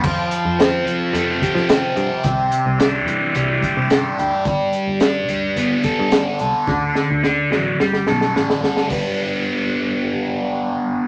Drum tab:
CC |x---------------|----------------|----------------|----------------|
HH |--x-x-x-x-x-x-x-|x-x-x-x-x-x-x-x-|x-x-x-x-x-x-x-x-|----------------|
SD |----o------oo---|----o-------o---|----o-------o---|o-o-o-o-oooooooo|
BD |o---------o-----|o---------o-----|o---------o-----|o---------------|

CC |----------------|
HH |o---------------|
SD |----------------|
BD |o---------------|